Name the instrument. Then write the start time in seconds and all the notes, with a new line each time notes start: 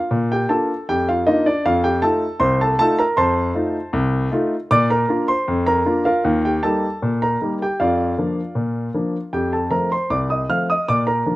grand piano
Already playing: F4 F5
0.11 A#2
0.32 G4 G5
0.49 A#3 D4 F4 A4 A5
0.89 F2 G4 G5
1.09 F4 F5
1.27 A#3 D4 D#4 F4 D#5
1.46 D4 D5
1.65 F2 F4 F5
1.84 G4 G5
2.02 A3 D#4 F4 A4 A5
2.40 C2 C5 C6
2.61 A4 A5
2.79 A3 D#4 F4 A4 A5
2.99 A#4 A#5
3.17 F2 C5 A5 C6
3.55 A3 D#4 F4
3.93 C2
4.31 A3 D#4 F4
4.71 A#2 D5 D6
4.90 A#4 A#5
5.09 A#3 D4 F4
5.28 C5 C6
5.48 F2
5.67 A#4 A#5
5.86 A#3 D4 F4
6.05 F4 A#4 F5
6.24 D#2
6.45 G4 G5
6.63 G3 A#3 D#4 A4 A5
7.02 A#2
7.22 A#4 A#5
7.42 G3 A#3 D#4
7.62 G4 G5
7.80 F2 F4 D5 F5
8.18 F3 A#3 D4
8.55 A#2
8.94 F3 A#3 D4
9.33 F2 G4 G5
9.53 A4 A5
9.70 F3 A3 C4 A#4 A#5
9.92 C5 C6
10.10 C2 D5 D6
10.30 D#5 D#6
10.49 F3 A3 C4 F5 F6
10.70 D#5 D#6
10.88 A#2 D5 D6
11.07 A#4 A#5
11.26 F3 A#3 D4